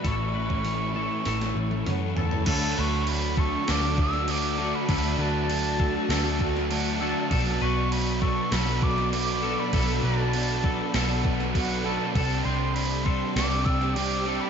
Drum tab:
CC |----------------|x---x---x---x---|x---x---x---x---|x---x---x---x---|
HH |o---o---o---o---|----------------|----------------|----------------|
SD |--------oo------|--------o--o----|--------o--o----|--------o--o----|
T1 |-----------o----|----------------|----------------|----------------|
T2 |------------o---|----------------|----------------|----------------|
FT |--------------oo|----------------|----------------|----------------|
BD |o--o------------|o-----o---o-----|o-----o---o-----|o-----o---o-----|

CC |x---x---x---x---|x---x---x---x---|
HH |----------------|----------------|
SD |--------o--o----|--------o--o----|
T1 |----------------|----------------|
T2 |----------------|----------------|
FT |----------------|----------------|
BD |o-----o---o-o---|o-----o---o-----|